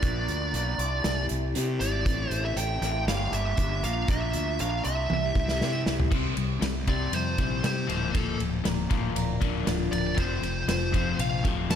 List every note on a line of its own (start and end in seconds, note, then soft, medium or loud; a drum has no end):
0.00 0.27 A#1 medium
0.00 0.77 A#2 medium
0.00 0.77 F3 medium
0.00 0.52 A#3 medium
0.00 0.53 D4 medium
0.00 1.26 D5 medium
0.00 kick loud
0.00 closed hi-hat medium
0.04 0.53 F4 medium
0.04 0.54 A#4 medium
0.28 0.52 D2 medium
0.28 closed hi-hat soft
0.53 0.77 B1 medium
0.53 0.77 A#3 medium
0.53 0.77 D4 medium
0.53 0.78 F4 medium
0.53 0.78 A#4 medium
0.53 closed hi-hat medium
0.78 1.02 C2 medium
0.78 1.53 C3 medium
0.78 1.54 G3 medium
0.78 1.54 C4 medium
0.78 1.54 E4 medium
0.78 1.55 G4 medium
0.78 1.55 C5 medium
0.78 closed hi-hat medium
1.04 1.28 C2 medium
1.04 snare loud
1.04 closed hi-hat medium
1.29 1.54 C2 medium
1.29 closed hi-hat medium
1.54 2.04 C3 medium
1.54 1.79 C3 medium
1.54 2.04 G3 medium
1.54 1.81 C4 medium
1.54 1.80 E4 medium
1.54 1.80 G4 loud
1.54 1.79 C5 loud
1.54 closed hi-hat medium
1.80 2.04 G#1 medium
1.80 2.05 C4 medium
1.80 2.05 E4 medium
1.80 2.04 G4 medium
1.80 2.04 C5 medium
1.80 2.30 D5 medium
1.80 closed hi-hat medium
2.05 2.30 A1 medium
2.05 2.81 A2 medium
2.05 2.82 E3 medium
2.05 2.55 A3 medium
2.05 2.56 C4 medium
2.05 2.56 E4 medium
2.05 2.57 A4 medium
2.05 kick loud
2.05 closed hi-hat medium
2.30 2.55 A1 medium
2.30 2.45 C5 medium
2.30 closed hi-hat medium
2.45 2.58 E5 medium
2.56 2.80 A1 medium
2.56 2.83 A3 medium
2.56 2.82 C4 medium
2.56 2.81 E4 medium
2.56 2.80 A4 medium
2.56 3.04 G5 loud
2.56 closed hi-hat medium
2.81 3.06 A1 medium
2.81 3.07 A3 medium
2.81 3.06 C4 medium
2.81 3.06 E4 medium
2.81 3.05 A4 medium
2.81 snare soft
2.81 closed hi-hat medium
3.06 3.31 G1 medium
3.06 3.56 G2 medium
3.06 3.57 D3 medium
3.06 3.57 G3 medium
3.06 3.58 A#3 medium
3.06 3.58 D4 loud
3.06 3.59 G4 loud
3.06 3.31 F5 medium
3.06 snare loud
3.06 closed hi-hat medium
3.32 3.56 G1 medium
3.32 3.84 E5 medium
3.32 closed hi-hat medium
3.57 3.82 G1 medium
3.57 3.81 G2 medium
3.57 3.82 D3 medium
3.57 3.82 G3 medium
3.57 3.82 A#3 medium
3.57 3.83 D4 loud
3.57 3.83 G4 medium
3.57 kick medium
3.57 closed hi-hat medium
3.83 4.07 A#1 medium
3.83 4.07 A#2 medium
3.83 4.08 F3 medium
3.83 4.08 A#3 medium
3.83 4.09 D4 medium
3.83 4.09 F4 medium
3.83 4.09 A#4 medium
3.83 4.10 F5 medium
3.83 closed hi-hat medium
4.08 4.33 A#1 medium
4.08 4.83 A#2 medium
4.08 4.83 F3 medium
4.08 4.58 A#3 medium
4.08 4.59 D4 medium
4.08 4.60 F4 medium
4.08 4.60 A#4 medium
4.08 4.57 E5 medium
4.08 kick loud
4.08 closed hi-hat medium
4.33 4.58 D2 medium
4.33 closed hi-hat medium
4.59 4.84 A#1 medium
4.59 4.83 A#3 medium
4.59 4.84 D4 medium
4.59 4.84 F4 medium
4.59 4.83 A#4 medium
4.59 4.84 F5 medium
4.59 closed hi-hat medium
4.84 5.09 C2 medium
4.84 5.59 C3 medium
4.84 5.59 G3 medium
4.84 5.60 C4 medium
4.84 5.60 E4 medium
4.84 5.61 G4 medium
4.84 5.61 C5 medium
4.84 5.82 E5 medium
4.84 closed hi-hat medium
5.10 5.35 C2 medium
5.10 high tom medium
5.35 5.60 C2 medium
5.35 kick medium
5.49 snare medium
5.60 6.10 C3 medium
5.60 5.86 C3 medium
5.60 6.10 G3 medium
5.60 5.87 C4 medium
5.60 5.86 E4 loud
5.60 5.86 G4 medium
5.60 5.85 C5 medium
5.60 snare medium
5.86 6.10 C2 medium
5.86 6.11 C4 soft
5.86 6.11 E4 medium
5.86 6.11 G4 medium
5.86 6.10 C5 medium
5.86 snare medium
6.00 floor tom medium
6.11 6.34 C2 medium
6.11 6.35 C3 medium
6.11 6.35 G3 medium
6.11 6.36 C4 loud
6.11 kick loud
6.11 crash medium
6.37 6.59 C2 medium
6.37 6.60 C3 medium
6.37 6.60 G3 medium
6.37 ride medium
6.61 7.07 C2 medium
6.61 6.85 C3 medium
6.61 6.85 G3 medium
6.61 7.92 C4 medium
6.61 snare medium
6.61 ride medium
6.88 7.12 C3 medium
6.88 7.12 G3 medium
6.88 7.12 C4 medium
6.88 7.63 G4 medium
6.88 7.14 D5 medium
6.88 kick medium
6.88 ride medium
7.12 7.35 F2 medium
7.12 7.36 C3 medium
7.12 7.36 G3 medium
7.12 7.92 C5 medium
7.12 7.65 C5 medium
7.12 ride medium
7.38 7.61 A#1 medium
7.38 7.62 C3 medium
7.38 7.62 G3 medium
7.38 7.63 C4 medium
7.38 7.90 E4 medium
7.38 kick medium
7.38 ride medium
7.63 7.87 C3 medium
7.63 7.86 C3 medium
7.63 7.87 G3 medium
7.63 7.90 G4 medium
7.63 8.16 C5 medium
7.63 snare loud
7.63 ride medium
7.87 8.12 D1 medium
7.87 8.12 A#2 medium
7.87 8.13 A#2 medium
7.87 8.13 F3 medium
7.87 8.13 A#3 medium
7.87 ride medium
8.13 8.37 D1 medium
8.13 8.38 A#2 medium
8.13 9.42 A#2 medium
8.13 8.38 F3 medium
8.13 8.39 A#3 medium
8.13 8.39 A4 medium
8.13 kick loud
8.13 ride medium
8.39 8.62 D1 medium
8.39 8.63 A#2 medium
8.39 8.63 F3 medium
8.39 ride medium
8.64 8.88 D1 medium
8.64 8.88 A#2 medium
8.64 8.88 F3 medium
8.64 9.92 A#3 medium
8.64 snare loud
8.64 ride medium
8.90 9.13 D1 medium
8.90 9.14 A#2 medium
8.90 9.15 F3 medium
8.90 9.15 A#3 medium
8.90 9.66 F4 medium
8.90 kick medium
8.90 ride medium
9.15 9.38 D1 medium
9.15 9.39 A#2 medium
9.15 9.39 F3 medium
9.15 9.90 A#4 medium
9.15 ride medium
9.41 9.64 D1 medium
9.41 9.65 A#2 medium
9.41 9.65 F3 medium
9.41 9.66 A#3 medium
9.41 10.18 D4 medium
9.41 kick medium
9.41 ride medium
9.66 9.89 D1 medium
9.66 9.89 A#2 medium
9.66 9.90 F3 medium
9.66 10.94 F4 medium
9.66 snare loud
9.66 ride medium
9.91 10.14 D1 medium
9.91 10.15 A#2 medium
9.91 10.15 F3 medium
9.91 10.17 A#4 medium
9.91 10.18 D5 medium
9.91 ride medium
10.16 10.40 F1 medium
10.16 10.41 F2 medium
10.16 11.44 F2 medium
10.16 10.41 C3 medium
10.16 10.42 F3 medium
10.16 10.65 C5 medium
10.16 kick loud
10.16 ride medium
10.42 10.65 F1 medium
10.42 10.66 F2 medium
10.42 10.66 C3 medium
10.42 ride medium
10.67 11.12 F1 medium
10.67 10.91 F2 medium
10.67 10.91 C3 medium
10.67 11.76 F3 medium
10.67 11.16 C5 medium
10.67 snare medium
10.67 ride medium
10.92 11.17 F2 medium
10.92 11.17 C3 medium
10.92 11.18 F3 medium
10.92 11.69 C4 medium
10.92 kick medium
10.92 ride medium
11.18 11.41 A#1 medium
11.18 11.42 F2 medium
11.18 11.42 C3 medium
11.18 11.76 F4 medium
11.18 11.44 F5 medium
11.18 ride medium
11.44 11.67 D1 medium
11.44 11.68 F2 medium
11.44 11.69 C3 medium
11.44 11.69 F3 medium
11.44 11.76 A3 medium
11.44 kick medium
11.44 ride medium
11.69 11.76 F2 medium
11.69 11.76 C3 medium
11.69 11.76 C4 medium
11.69 11.76 A5 medium
11.69 snare loud
11.69 ride medium